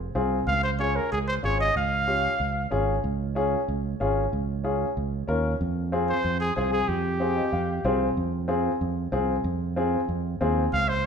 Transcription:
0.15 fingered electric bass C2, upright piano C4 F4 G#4
0.47 fingered electric bass C#2, trumpet F5
0.64 trumpet C5
0.79 upright piano C#4 F4 G#4, trumpet C#5
0.96 trumpet A#4
1.12 fingered electric bass C#2, trumpet G#4
1.28 trumpet C5
1.43 fingered electric bass G#1, upright piano C#4 F4 G#4, trumpet C#5
1.61 trumpet D#5
1.76 fingered electric bass C#2, trumpet F5
2.08 upright piano C#4 F4 G4
2.40 fingered electric bass C#2
2.71 fingered electric bass G#1, upright piano C#4 F4 G#4
3.04 fingered electric bass C#2
3.35 upright piano C#4 F4 G#4
3.68 fingered electric bass C#2
4.00 fingered electric bass G#1, upright piano C#4 F4 G#4
4.33 fingered electric bass C#2
4.64 upright piano C#4 F4 G#4
4.97 fingered electric bass C#2
5.28 fingered electric bass D#2, upright piano C#4 F4 A#4
5.61 fingered electric bass F2
5.92 upright piano C4 F4 G#4
6.09 trumpet C5
6.25 fingered electric bass F2
6.40 trumpet G#4
6.56 fingered electric bass C2, upright piano C4 F4 G#4, trumpet G#4
6.73 trumpet G#4
6.88 fingered electric bass F2, trumpet G4
7.20 upright piano C4 F4 G#4
7.37 upright piano D#5
7.53 fingered electric bass F2, upright piano F5
7.84 fingered electric bass C2, upright piano C4 F4 G#4 G#5
8.17 fingered electric bass F2
8.48 upright piano C4 F4 G#4
8.81 fingered electric bass F2
9.12 fingered electric bass C2, upright piano C4 F4 G#4
9.44 fingered electric bass F2
9.76 upright piano C4 F4 G#4
10.09 fingered electric bass F2
10.41 fingered electric bass D#2, upright piano C4 F4 G#4
10.73 fingered electric bass C#2, trumpet F5
10.89 trumpet C5

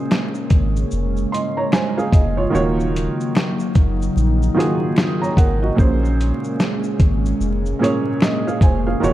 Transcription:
Already playing: felt piano A#2 A#3 C#4 F#4 G#4 C5 D#5, ambient pad C#3 G#3 A#3 C#4
0.11 finger snap, snare, shaker
0.35 shaker
0.50 sub bass G#1, kick, closed hi-hat, shaker
0.77 shaker
0.91 sub bass F1, shaker
1.17 shaker
1.32 felt piano D#5 C6, closed hi-hat, shaker
1.57 felt piano C#5 A#5
1.72 felt piano C5 G#5, finger snap, snare, shaker
1.98 felt piano G#4 F5, shaker
2.12 sub bass F1, felt piano D#5, kick, closed hi-hat, shaker
2.37 felt piano F4 C#5
2.50 sub bass D#1, ambient pad C#3 D#4, felt piano D#3 A#3 F4 F#4
2.55 ambient pad F#3, felt piano C#5, shaker
2.80 shaker
2.96 closed hi-hat, shaker
3.21 shaker
3.35 finger snap, snare, shaker
3.60 shaker
3.75 sub bass F#1, kick, closed hi-hat, shaker
4.02 shaker
4.16 sub bass A#1, shaker
4.43 shaker
4.54 felt piano D#3 A#3 F4 F#4 G#4
4.60 closed hi-hat, shaker
4.96 finger snap, snare, shaker
5.21 felt piano C#5 A#5, shaker
5.37 sub bass G#1, felt piano A#4 F#5, kick, closed hi-hat, shaker
5.62 felt piano F#4 D#5
5.75 sub bass A#1, felt piano A#2 A#3 C#4 G#4, ambient pad C#3 G#3 A#3 C#4, kick
5.79 felt piano C5, shaker
6.05 shaker
6.21 closed hi-hat, shaker
6.44 shaker
6.60 finger snap, snare, shaker
6.84 shaker
7.00 sub bass G#1, kick, closed hi-hat, shaker
7.26 shaker
7.40 sub bass F1, shaker
7.66 shaker
7.79 felt piano A#2 A#3 C#4 G#4 C#5
7.84 closed hi-hat, shaker
8.21 felt piano D#5, finger snap, snare, shaker
8.47 felt piano G#4 F5, shaker
8.61 sub bass F1, felt piano C5 G#5, kick, closed hi-hat, shaker
8.87 felt piano G#4 F5
9.00 sub bass D#1, ambient pad C#3 F#3 D#4, felt piano D#3 A#3 F4 F#4 C#5, shaker

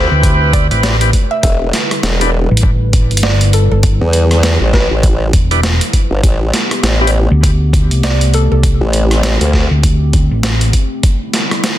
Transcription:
Already playing: ambient pad C3 A3 G4 B4, tonewheel organ C4 E4 G4 B4, synth pluck C5
0.11 fingered electric bass D2
0.23 kick, closed hi-hat
0.53 synth pluck D5, kick, closed hi-hat
0.71 fingered electric bass A1, tonewheel organ C4 E4 G4 B4, closed hi-hat
0.83 synth pluck D5, snare, closed hi-hat
1.01 tonewheel organ C4 E4 G4 B4, closed hi-hat
1.13 kick, closed hi-hat
1.31 synth pluck E5
1.43 wobble bass E1, ambient pad D3 G3 E4, synth pluck E5, kick, closed hi-hat
1.73 snare, closed hi-hat
1.91 cross-stick, closed hi-hat
2.03 wobble bass E1, snare, closed hi-hat
2.21 tonewheel organ D4 E4 G4 B4, closed hi-hat
2.51 fingered electric bass A1
2.57 closed hi-hat
2.63 kick
2.93 kick, closed hi-hat
3.11 fingered electric bass G1, closed hi-hat
3.17 closed hi-hat
3.23 synth pluck D5, snare
3.41 closed hi-hat
3.53 synth pluck A4, closed hi-hat
3.71 fingered electric bass G1, synth pluck A4
3.83 kick, closed hi-hat
4.01 wobble bass E2
4.13 closed hi-hat
4.31 cross-stick, closed hi-hat
4.43 snare, closed hi-hat
4.61 wobble bass A1
4.73 synth pluck B4, kick, snare
4.91 wobble bass A1
5.03 kick, closed hi-hat
5.33 fingered electric bass E1, kick, closed hi-hat
5.51 tonewheel organ D4 E4 G4 B4, closed hi-hat
5.63 snare, closed hi-hat
5.81 closed hi-hat
5.93 kick, closed hi-hat
6.11 wobble bass G1
6.23 wobble bass A1, ambient pad C3 A3 B3 G4, kick, closed hi-hat
6.54 snare, closed hi-hat
6.71 cross-stick, closed hi-hat
6.83 wobble bass A1, snare, closed hi-hat
7.01 tonewheel organ C4 E4 G4 B4
7.07 closed hi-hat
7.31 fingered electric bass D2
7.43 kick, closed hi-hat
7.73 kick, closed hi-hat
7.91 fingered electric bass C2, closed hi-hat
8.03 synth pluck D5, snare, closed hi-hat
8.21 closed hi-hat
8.34 synth pluck A4, closed hi-hat
8.51 fingered electric bass C2, synth pluck A4
8.63 ambient pad C4, kick, closed hi-hat
8.81 wobble bass A1
8.93 closed hi-hat
9.11 cross-stick, closed hi-hat
9.23 snare, closed hi-hat
9.41 wobble bass D2, closed hi-hat
9.53 kick, snare
9.71 fingered electric bass D2
9.83 kick, closed hi-hat
10.13 kick, closed hi-hat
10.31 fingered electric bass A1
10.43 snare, closed hi-hat
10.61 closed hi-hat
10.73 kick, closed hi-hat
11.03 ambient pad D3 G3 B3 E4, kick, closed hi-hat
11.34 snare, closed hi-hat
11.51 cross-stick, closed hi-hat
11.64 snare, closed hi-hat

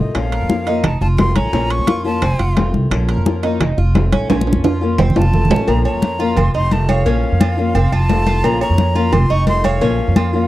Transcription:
Already playing: upright bass A1, steel-string acoustic guitar D#3 A3 C4 F4
0.00 flute D#5
0.15 upright bass A#1, steel-string acoustic guitar F3 A#3 C#4 F4, flute F5, high bongo, high conga, high timbale
0.32 cuban tres A#4, high conga, high timbale
0.41 upright bass F2
0.49 steel-string acoustic guitar F3 A#3 C#4 F4, high bongo, high conga
0.66 steel-string acoustic guitar A#3 C#4 F4, cuban tres D#4, high bongo, high conga, high timbale
0.84 upright bass F1, flute A5, muted steel-string acoustic guitar stroke, high bongo, high conga, low conga, high timbale
1.01 upright bass F1, cuban tres F4, flute A5, high bongo, high conga
1.18 steel-string acoustic guitar D#3 A3 C4 F4, flute C6, high bongo, low bongo, high conga, high timbale, low timbale
1.36 upright bass A1, cuban tres C#4, flute A#5, high bongo, high conga, high timbale
1.53 upright bass A#1, steel-string acoustic guitar F3 A#3 C#4 F4, cuban tres C#4, high bongo, high conga
1.70 flute C#6, high conga, high timbale
1.79 upright bass F2
1.87 steel-string acoustic guitar F3 A#3 C#4 F4, cuban tres F4, high bongo, high conga, high timbale
2.04 steel-string acoustic guitar A#3 C#4 F4, flute A5, high bongo, high conga
2.22 upright bass F1, cuban tres C4, muted steel-string acoustic guitar stroke, high bongo, high conga, high timbale
2.39 upright bass F1, cuban tres F4, high bongo, high conga, high timbale
2.56 steel-string acoustic guitar D#3 A3 C4 F4, high bongo, low bongo, high conga, high timbale
2.74 upright bass C2, high bongo, high conga
2.91 upright bass A#1, steel-string acoustic guitar F3 A#3 C#4 F4, high bongo, high conga, high timbale
3.09 cuban tres A#4, high conga, high timbale
3.17 upright bass F2
3.25 steel-string acoustic guitar F3 A#3 C#4 F4, high bongo, high conga
3.43 steel-string acoustic guitar A#3 C#4 F4, cuban tres D#4, high bongo, high conga, high timbale
3.60 upright bass F1, muted steel-string acoustic guitar stroke, high bongo, high conga, low conga, high timbale
3.78 upright bass F1, cuban tres F4, high bongo, high conga
3.95 steel-string acoustic guitar D#3 A3 C4 F4, high bongo, low bongo, high conga, high timbale, low timbale
4.12 upright bass A1, cuban tres C#4, high bongo, high conga, high timbale
4.29 upright bass A#1, steel-string acoustic guitar F3 A#3 C#4 F4, cuban tres C#4, high bongo, high conga, high timbale
4.41 high conga
4.47 high timbale
4.53 upright bass F2, high conga
4.64 steel-string acoustic guitar F3 A#3 C#4 F4, cuban tres F4, high bongo, low conga, high timbale
4.81 steel-string acoustic guitar A#3 C#4 F4, high bongo
4.98 upright bass F1, cuban tres C4, muted steel-string acoustic guitar stroke, high bongo, low conga, low timbale
5.10 low conga
5.16 upright bass F1, cuban tres F4, flute A5, high bongo, low timbale
5.22 low conga
5.33 steel-string acoustic guitar D#3 A3 C4 F4, low conga
5.45 low conga
5.50 upright bass A1, cuban tres C#4, low bongo, low timbale
5.56 low conga
5.67 upright bass A#1, steel-string acoustic guitar F3 A#3 C#4 F4, flute A#5, cowbell, high conga, low agogo
5.85 cuban tres C#5, flute A#5, high conga, low agogo
5.94 upright bass F2
6.02 steel-string acoustic guitar F3 A#3 C#4 F4, cowbell, high conga
6.19 steel-string acoustic guitar A#3 C#4 F4, cuban tres F4, high conga
6.37 upright bass F1, flute C6, muted steel-string acoustic guitar stroke, cowbell, high conga, low conga, low agogo
6.54 upright bass F1, cuban tres D#4, flute C6, high conga
6.71 steel-string acoustic guitar D#3 A3 C4 F4, flute A5, cowbell, high conga, low agogo
6.89 cuban tres C#5, flute F5, cowbell, high conga, low agogo
7.06 upright bass A#1, steel-string acoustic guitar F3 A#3 C#4 F4, cuban tres C#4, cowbell, high conga
7.24 high conga
7.32 upright bass F2
7.40 steel-string acoustic guitar F3 A#3 C#4 F4, cuban tres F4, cowbell, high conga, low agogo
7.57 steel-string acoustic guitar A#3 C#4 F4, high conga
7.74 upright bass F1, cuban tres C4, muted steel-string acoustic guitar stroke, cowbell, high conga, low agogo
7.92 upright bass F1, cuban tres F4, flute A5, high conga, low agogo
8.09 steel-string acoustic guitar D#3 A3 C4 F4, cowbell, high conga, low timbale, low agogo
8.26 cuban tres F4, cowbell, high conga
8.43 upright bass A#1, steel-string acoustic guitar F3 A#3 C#4 F4, flute A#5, cowbell, high conga, low agogo
8.61 cuban tres C#5, flute A#5, high conga, low agogo
8.70 upright bass F2
8.78 steel-string acoustic guitar F3 A#3 C#4 F4, cowbell, high conga
8.95 steel-string acoustic guitar A#3 C#4 F4, cuban tres F4, high conga
9.12 upright bass F1, flute C6, muted steel-string acoustic guitar stroke, cowbell, high conga, low conga, low agogo
9.30 upright bass F1, cuban tres D#4, flute C#6, high conga
9.46 steel-string acoustic guitar D#3 A3 C4 F4, flute C6, cowbell, high conga, low agogo
9.64 cuban tres C#5, flute F5, cowbell, high conga, low agogo
9.81 upright bass A#1, steel-string acoustic guitar F3 A#3 C#4 F4, cuban tres C#4, cowbell, high conga
9.99 high conga
10.08 upright bass F2
10.16 steel-string acoustic guitar F3 A#3 C#4 F4, cuban tres F4, cowbell, high conga, low agogo
10.33 steel-string acoustic guitar A#3 C#4 F4, high conga

